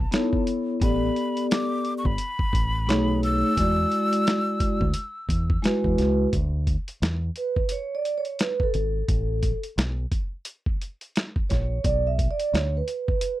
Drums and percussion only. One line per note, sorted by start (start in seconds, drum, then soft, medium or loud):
0.12 snare loud
0.12 closed hi-hat medium
0.33 kick medium
0.47 closed hi-hat medium
0.81 kick loud
0.81 closed hi-hat medium
1.16 closed hi-hat medium
1.37 closed hi-hat medium
1.51 snare loud
1.51 closed hi-hat medium
1.85 closed hi-hat medium
2.05 kick medium
2.18 closed hi-hat medium
2.39 kick medium
2.53 kick medium
2.53 closed hi-hat medium
2.89 snare loud
2.89 closed hi-hat medium
3.23 closed hi-hat medium
3.57 kick medium
3.57 closed hi-hat medium
3.92 closed hi-hat medium
4.13 closed hi-hat medium
4.27 snare loud
4.27 closed hi-hat medium
4.60 kick medium
4.60 closed hi-hat medium
4.81 kick medium
4.94 closed hi-hat medium
5.29 kick medium
5.29 closed hi-hat medium
5.50 kick loud
5.64 snare loud
5.64 closed hi-hat medium
5.84 kick medium
5.98 snare soft
5.98 closed hi-hat medium
6.33 kick loud
6.33 closed hi-hat medium
6.67 kick medium
6.67 closed hi-hat medium
6.88 closed hi-hat medium
7.02 snare medium
7.02 closed hi-hat medium
7.36 closed hi-hat medium
7.56 kick loud
7.69 closed hi-hat medium
8.05 closed hi-hat medium
8.25 closed hi-hat soft
8.39 snare loud
8.39 closed hi-hat medium
8.60 kick medium
8.74 closed hi-hat medium
9.08 kick loud
9.08 closed hi-hat medium
9.43 kick medium
9.43 closed hi-hat medium
9.63 closed hi-hat medium
9.78 snare loud
9.78 closed hi-hat medium
10.12 kick medium
10.12 closed hi-hat medium
10.45 closed hi-hat loud
10.66 kick medium
10.81 closed hi-hat medium
11.01 closed hi-hat medium
11.16 snare loud
11.16 closed hi-hat medium
11.36 kick loud
11.50 kick medium
11.50 snare soft
11.50 closed hi-hat medium
11.84 kick loud
11.84 closed hi-hat medium
12.19 kick medium
12.19 closed hi-hat medium
12.40 closed hi-hat medium
12.55 snare loud
12.55 closed hi-hat medium
12.88 closed hi-hat medium
13.08 kick medium
13.21 closed hi-hat loud